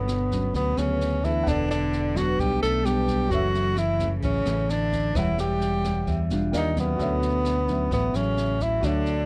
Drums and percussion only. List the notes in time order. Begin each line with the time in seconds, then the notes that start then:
0.08 cross-stick, snare
0.31 kick, snare
0.54 kick, snare
0.77 cross-stick, snare
1.01 snare
1.24 kick, snare
1.47 kick, cross-stick, snare
1.70 snare
1.93 snare
2.16 kick, cross-stick, snare
2.39 kick, snare
2.63 snare
2.85 cross-stick, snare
3.08 kick, snare
3.31 kick, snare
3.54 snare
3.77 cross-stick, snare
3.99 kick, snare
4.23 kick, snare
4.46 cross-stick, snare
4.69 snare
4.92 kick, snare
5.15 kick, cross-stick, snare
5.38 snare
5.61 snare
5.84 kick, cross-stick, snare
6.07 kick, snare
6.30 snare
6.53 cross-stick, snare
6.76 kick, snare
6.99 kick, snare
7.22 snare
7.45 cross-stick, snare
7.68 kick, snare
7.91 kick, snare
8.14 cross-stick, snare
8.37 snare
8.60 kick, snare
8.83 kick, cross-stick, snare
9.06 snare